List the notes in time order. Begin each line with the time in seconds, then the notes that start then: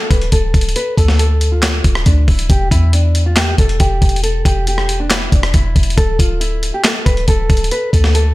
0.10 D1 B4, kick, closed hi-hat
0.22 closed hi-hat
0.32 D1 A4, kick, closed hi-hat
0.54 D1, kick, closed hi-hat
0.61 closed hi-hat
0.69 closed hi-hat
0.76 B4, closed hi-hat
0.98 D2 A4, kick, closed hi-hat
1.08 snare
1.19 A4, closed hi-hat
1.41 closed hi-hat
1.52 F4
1.62 snare, clap, closed hi-hat
1.84 D1, kick, closed hi-hat
1.95 cross-stick
2.06 D2 D4, kick, closed hi-hat
2.28 D1 E4, kick, closed hi-hat, open hi-hat
2.39 closed hi-hat
2.50 E1 G4, kick, closed hi-hat
2.71 E2 E4, kick, closed hi-hat
2.93 D4, closed hi-hat
3.15 closed hi-hat
3.26 F4
3.36 G4, snare, clap, closed hi-hat
3.58 E1 A4, kick, closed hi-hat
3.69 closed hi-hat
3.80 E1 G4, kick, closed hi-hat
4.02 E1, kick, closed hi-hat
4.09 closed hi-hat
4.16 closed hi-hat
4.23 A4, closed hi-hat
4.45 E1 G4, kick, closed hi-hat
4.67 G4, closed hi-hat
4.78 cross-stick
4.89 closed hi-hat
5.00 D4
5.10 E4, snare, clap, closed hi-hat
5.32 E1 D4, kick, closed hi-hat
5.43 cross-stick, closed hi-hat
5.54 E1 E4, kick, closed hi-hat
5.76 E1, kick, closed hi-hat
5.83 closed hi-hat
5.90 closed hi-hat
5.97 D1 A4, kick, closed hi-hat
6.19 D1 F4, kick, closed hi-hat
6.40 E4, closed hi-hat
6.63 closed hi-hat
6.74 G4
6.84 A4, snare, clap, closed hi-hat
7.06 D1 B4, kick, closed hi-hat
7.17 closed hi-hat
7.28 D1 A4, kick, closed hi-hat
7.50 D1, kick, closed hi-hat
7.57 closed hi-hat
7.64 closed hi-hat
7.71 B4, closed hi-hat
7.93 D2 A4, kick, closed hi-hat
8.04 snare
8.15 A4, closed hi-hat